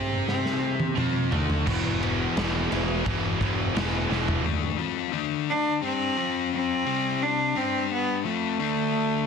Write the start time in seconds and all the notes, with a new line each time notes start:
Already playing: C3 C4 G4 C5
0.28 C4, snare
0.46 snare
0.80 high tom
0.97 F2 F3 C4 F4, mid tom
1.32 D2 D3 A3 D4, floor tom
1.50 floor tom
1.67 E1 E2 B2 E3, kick, crash
2.02 E2 B2 E3, crash
2.36 E1 E2 B2 E3, snare, crash
2.71 E1 E2 B2 E3, crash
3.06 E1 E2 B2 E3, kick, crash
3.40 E1 E2 B2 E3, kick, crash
3.75 E1 E2 B2 E3, snare, crash
4.10 E1 E2 B2 E3, snare
4.28 floor tom
4.43 D3 A3 D4
4.78 F3 C4 F4
5.12 D3 A3 D4
5.50 D4
5.82 G3 C4 D4 G4
6.17 F3 C4 F4
6.55 C4
6.86 C3 G3 C4
7.23 D4
7.55 G3 C4 D4 G4
7.93 B3
8.25 F3 A3 C4 F4
8.59 D3 A3 D4